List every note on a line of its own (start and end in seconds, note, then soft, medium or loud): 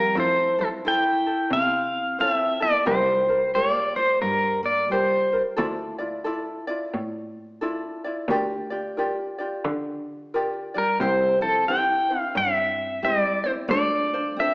0.00 0.13 F2 medium
0.00 0.15 G3 medium
0.00 0.16 F4 medium
0.00 0.16 A#4 medium
0.00 0.19 A#4 medium
0.00 0.15 F5 medium
0.16 1.04 F2 loud
0.16 0.55 A3 medium
0.16 0.58 E4 medium
0.16 0.58 F4 medium
0.16 0.58 A4 medium
0.16 0.57 C5 medium
0.16 0.60 C5 medium
0.58 0.65 F3 medium
0.58 0.85 E4 soft
0.58 0.85 F4 soft
0.58 0.84 A4 soft
0.58 0.68 A4 medium
0.85 1.48 E4 medium
0.85 1.26 E4 medium
0.85 1.25 A4 medium
0.85 1.26 C5 medium
0.85 1.53 G5 medium
1.26 2.20 A4 medium
1.51 2.39 C3 medium
1.51 2.16 C4 medium
1.51 2.21 F5 loud
2.19 2.58 C4 medium
2.19 2.60 E4 medium
2.19 2.61 F4 medium
2.19 2.59 A4 medium
2.19 2.60 C5 medium
2.19 2.32 F5 medium
2.32 2.63 E5 medium
2.60 2.86 A#3 medium
2.60 2.86 E4 medium
2.60 2.85 F4 soft
2.60 2.86 A4 medium
2.60 2.88 D5 loud
2.85 3.75 C2 loud
2.85 3.51 G3 medium
2.85 3.28 F4 medium
2.85 3.28 G4 medium
2.85 3.28 A#4 medium
2.85 3.27 C5 medium
2.85 3.51 C5 medium
3.28 3.54 F4 soft
3.28 3.54 A#4 soft
3.28 3.54 C5 medium
3.54 3.94 A#3 medium
3.54 3.96 F4 medium
3.54 3.96 G4 medium
3.54 3.96 A#4 medium
3.54 3.96 C5 medium
3.54 3.97 D5 medium
3.96 4.20 A3 medium
3.96 4.91 F4 soft
3.96 4.21 C5 medium
3.96 4.90 C5 medium
4.22 5.10 G2 medium
4.22 4.61 G3 medium
4.22 4.61 A#4 medium
4.63 4.88 A#3 medium
4.63 4.92 D5 medium
4.88 5.40 G3 medium
4.88 5.32 F4 medium
4.88 5.31 G4 medium
4.88 5.42 C5 medium
4.93 5.32 A#4 medium
4.93 5.31 C5 medium
5.32 5.56 F4 soft
5.32 5.57 A#4 soft
5.32 5.57 C5 medium
5.57 6.46 D2 loud
5.57 5.99 E4 medium
5.57 5.99 F4 medium
5.57 5.98 A4 medium
5.57 5.97 D5 medium
5.98 6.25 E4 soft
5.98 6.24 F4 medium
5.98 6.24 D5 medium
6.24 6.67 E4 medium
6.24 6.67 F4 medium
6.24 6.66 A4 medium
6.24 6.66 D5 medium
6.67 7.61 E4 medium
6.67 7.62 F4 medium
6.67 7.61 D5 medium
6.94 7.81 A2 medium
7.61 8.03 E4 medium
7.61 8.03 F4 medium
7.61 8.02 A4 medium
7.61 8.03 D5 medium
8.04 8.29 E4 medium
8.04 8.29 F4 soft
8.04 8.30 D5 medium
8.28 9.16 D2 loud
8.28 8.71 F4 medium
8.28 8.71 G4 loud
8.28 8.71 A#4 medium
8.28 8.69 D5 loud
8.70 8.97 F4 soft
8.70 8.97 G4 medium
8.70 8.96 D5 medium
8.97 9.39 F4 medium
8.97 9.39 G4 medium
8.97 9.38 A#4 medium
8.97 9.37 D5 medium
9.38 10.33 F4 medium
9.38 10.35 G4 medium
9.38 10.32 D5 medium
9.65 10.53 D3 medium
10.34 10.74 F4 medium
10.34 10.74 G4 medium
10.34 10.74 A#4 medium
10.34 10.73 D5 medium
10.74 10.99 G3 medium
10.74 11.01 F4 soft
10.74 10.99 G4 soft
10.74 11.01 A#4 medium
10.74 11.00 D5 medium
11.00 11.88 C2 medium
11.00 11.39 G3 medium
11.00 11.42 C4 medium
11.00 11.41 E4 medium
11.00 11.41 G4 medium
11.00 11.39 C5 medium
11.00 11.40 C5 medium
11.41 11.65 F3 medium
11.41 11.68 C4 soft
11.41 11.68 E4 soft
11.41 11.68 A4 medium
11.41 11.67 C5 medium
11.68 12.10 C4 medium
11.68 12.16 E4 medium
11.68 12.10 E4 medium
11.68 12.09 G4 medium
11.68 12.09 C5 medium
11.68 12.20 G5 medium
12.10 13.04 C4 soft
12.10 13.03 E4 medium
12.10 13.05 C5 medium
12.16 12.32 D4 medium
12.16 12.37 F5 medium
12.35 13.23 G2 medium
12.35 12.99 C4 medium
12.35 13.06 E5 medium
13.03 13.41 G3 medium
13.03 13.45 C4 medium
13.03 13.45 E4 medium
13.03 13.44 G4 medium
13.03 13.44 C5 medium
13.03 13.46 D5 medium
13.44 13.51 A3 medium
13.44 13.72 E4 soft
13.44 13.51 C5 medium
13.44 13.71 C5 medium
13.48 13.71 C4 soft
13.68 14.54 D2 loud
13.68 14.33 A3 medium
13.68 14.12 D4 medium
13.68 14.12 A4 medium
13.68 14.40 D5 loud
13.72 14.12 F4 medium
13.72 14.12 C5 medium
14.13 14.38 D4 soft
14.13 14.38 F4 soft
14.13 14.39 C5 medium
14.36 14.54 C4 medium
14.36 14.54 D4 medium
14.36 14.54 F4 medium
14.36 14.54 A4 medium
14.36 14.54 E5 loud
14.41 14.54 C5 medium